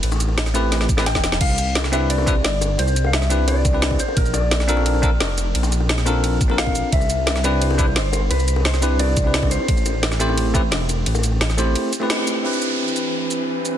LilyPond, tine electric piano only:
\new Staff \with { instrumentName = "Tine electric piano" } { \time 4/4 \key c \major \tempo 4 = 174 r4. <a c' e' g' b'>4 r16 <a c' e' g' b'>16 r4 | r4. <c' d' e' g' b'>4 <c' d' e' g' b'>16 r4 r16 | r4. <c' d' e' g' b'>4 r16 <c' d' e' g' b'>8. r8 | r4. <c' d' f' a' bes'>4 <c' d' f' a' bes'>16 r4 r16 |
r4. <c' d' f' a' bes'>4 r16 <c' d' f' a' bes'>4~ <c' d' f' a' bes'>16 | r4. <c' d' e' g' b'>4 <c' d' e' g' b'>16 r4 r16 | r4. <c' d' e' g' b'>4 r16 <c' d' e' g' b'>4~ <c' d' e' g' b'>16 | r4. <a c' e' g' c''>4 <a c' e' g' b'>16 r4 r16 |
r4. <a c' e' g' c''>4 r16 <a c' e' g' b'>4~ <a c' e' g' b'>16 | <c' d' e' g' b'>1 | }